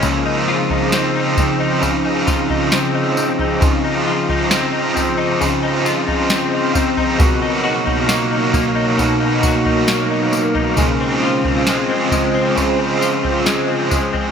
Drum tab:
TB |x---x-x-x-x-x-x-|x---x-x-x-x-x-x-|x---x-x-x-x-x-x-|x---x-x-x-x-x-x-|
SD |----o-------o---|----o-------o---|----o-------o---|----o-------o---|
FT |o--o--o-o--o---o|o--o--o-o--o---o|o--o--o-o--o---o|o--o--o-o--o---o|
BD |o-----o---o-----|o-------------o-|o-----o---o-----|o-----o-------o-|